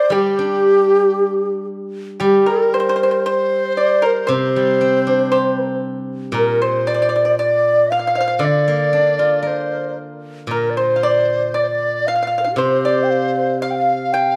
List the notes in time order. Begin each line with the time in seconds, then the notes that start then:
Already playing: C5 D5
0.10 G3 G4
0.15 G4
0.39 D4
2.20 G3 G4
2.24 G4
2.46 A#4
2.51 A#4
2.74 C5
2.80 C5
2.89 C5
2.96 C5
3.03 C5
3.11 C5
3.26 C5
3.77 D5
4.02 A#4
4.27 C3 C5
4.32 C5
4.56 G3
4.81 C4
5.07 D4
5.32 G4 C5
5.63 A#4
6.32 A#2 A#4
6.38 A#4
6.62 C5
6.87 D5
6.94 D5
7.02 D5
7.09 D5
7.16 D5
7.25 D5
7.39 D5
7.91 F5
7.99 F5
8.07 F5
8.15 C5 F5
8.20 F5
8.28 F5
8.39 D3 D5
8.44 D5
8.68 A#3
8.93 D4
9.19 F4
9.43 A#4
9.47 C5
10.47 A#2 A#4
10.52 A#4
10.70 D5
10.76 C5
10.96 F5
11.03 D5
11.54 D5
11.63 C5
11.68 D5
12.07 F5
12.15 F5
12.22 F5
12.27 F5
12.38 A#4 F5
12.42 C5 F5
12.47 D4 F4
12.53 C3 G4 A#4
12.58 C5
12.85 D5
13.04 G5
13.11 F5
13.62 F5
13.71 G5
13.76 F5
14.12 G5